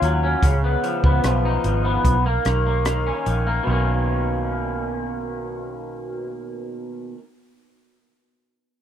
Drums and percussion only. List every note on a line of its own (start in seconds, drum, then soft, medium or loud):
0.02 closed hi-hat soft
0.43 kick loud
0.43 closed hi-hat medium
0.84 closed hi-hat soft
1.04 kick medium
1.24 cross-stick medium
1.24 closed hi-hat medium
1.64 closed hi-hat soft
2.05 kick medium
2.05 closed hi-hat medium
2.45 cross-stick medium
2.45 closed hi-hat soft
2.85 cross-stick medium
2.85 closed hi-hat medium
3.26 closed hi-hat soft